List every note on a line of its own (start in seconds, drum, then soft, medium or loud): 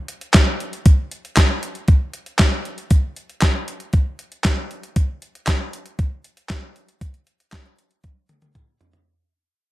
0.08 closed hi-hat medium
0.21 closed hi-hat medium
0.34 kick loud
0.34 snare loud
0.34 clap loud
0.34 closed hi-hat medium
0.60 closed hi-hat medium
0.73 closed hi-hat medium
0.86 kick loud
0.86 closed hi-hat loud
1.11 closed hi-hat medium
1.25 closed hi-hat soft
1.37 kick loud
1.37 snare loud
1.37 clap loud
1.37 closed hi-hat loud
1.63 closed hi-hat medium
1.75 closed hi-hat medium
1.88 kick loud
1.88 closed hi-hat medium
2.13 closed hi-hat medium
2.26 closed hi-hat medium
2.39 kick loud
2.39 snare loud
2.39 clap loud
2.39 closed hi-hat medium
2.65 closed hi-hat medium
2.78 closed hi-hat medium
2.91 kick loud
2.91 closed hi-hat loud
3.16 closed hi-hat medium
3.29 closed hi-hat soft
3.41 kick loud
3.41 snare loud
3.41 clap loud
3.41 closed hi-hat medium
3.68 closed hi-hat medium
3.80 closed hi-hat medium
3.93 kick loud
3.93 closed hi-hat medium
4.19 closed hi-hat medium
4.32 closed hi-hat medium
4.44 kick loud
4.44 snare loud
4.44 clap medium
4.44 closed hi-hat medium
4.71 closed hi-hat medium
4.83 closed hi-hat medium
4.96 kick loud
4.96 closed hi-hat loud
5.22 closed hi-hat medium
5.35 closed hi-hat medium
5.47 kick loud
5.47 snare loud
5.47 clap loud
5.47 closed hi-hat medium
5.73 closed hi-hat medium
5.86 closed hi-hat medium
5.99 kick loud
5.99 closed hi-hat medium
6.24 closed hi-hat medium
6.37 closed hi-hat medium
6.49 kick loud
6.49 snare loud
6.49 clap medium
6.49 closed hi-hat medium
6.76 closed hi-hat medium
6.89 closed hi-hat medium
7.01 kick loud
7.01 closed hi-hat loud
7.14 closed hi-hat soft
7.27 closed hi-hat medium
7.40 closed hi-hat soft
7.52 kick loud
7.52 snare loud
7.52 clap loud
7.52 closed hi-hat medium
7.66 closed hi-hat soft
7.79 closed hi-hat medium
7.91 closed hi-hat soft
8.04 kick loud
8.04 closed hi-hat medium
8.04 high tom medium
8.29 closed hi-hat medium
8.29 mid tom medium
8.42 closed hi-hat medium
8.42 mid tom medium
8.55 kick loud
8.55 closed hi-hat medium
8.55 mid tom medium
8.81 closed hi-hat medium
8.81 floor tom loud
8.93 closed hi-hat medium
8.93 floor tom medium